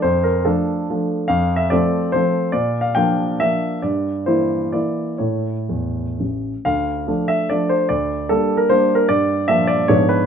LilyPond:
<<
  \new Staff \with { instrumentName = "Grand piano" } { \time 3/4 \key d \minor \tempo 4 = 143 c''8 bes'8 a'4 r4 | \tuplet 3/2 { f''4 e''8 } d''4 c''4 | \tuplet 3/2 { d''4 f''8 } g''4 e''4 | d''4 c''4 d''4 |
cis''2 r4 | f''4. e''8 d''8 c''8 | d''4 \tuplet 3/2 { a'4 bes'8 c''4 bes'8 } | d''4 e''8 d''8 cis''8 b'8 | }
  \new Staff \with { instrumentName = "Grand piano" } { \time 3/4 \key d \minor f,4 <f a d'>4 <f a d'>4 | f,4 <f a c'>4 <f a c'>4 | bes,4 <f bes d'>4 <f bes d'>4 | g,4 <e bes e'>4 <e bes e'>4 |
<a, a e'>4 e,4 a,,4 | d,4 <f a d'>4 <f a d'>4 | d,4 <g bes d'>4 <g bes d'>4 | g,4 <f bes d'>4 <gis, eis b d'>4 | }
>>